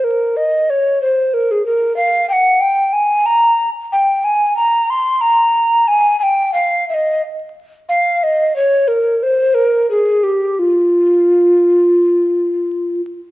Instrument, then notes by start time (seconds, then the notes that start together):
recorder
0.04 A#4
0.37 D#5
0.70 C#5
1.02 C5
1.34 A#4
1.51 G#4
1.66 A#4
1.96 F5
2.29 F#5 G5
2.60 G5
2.93 G#5
3.26 A#5
3.92 G5
4.24 G#5
4.57 A#5
4.90 C6
5.21 A#5
5.88 G#5
6.20 G5 G#5
6.54 F5
6.89 E5
6.94 D#5
7.89 F5
8.23 D#5
8.56 C#5
8.88 A#4
9.23 C5
9.54 A#4
9.91 G#4
10.23 G4
10.59 F4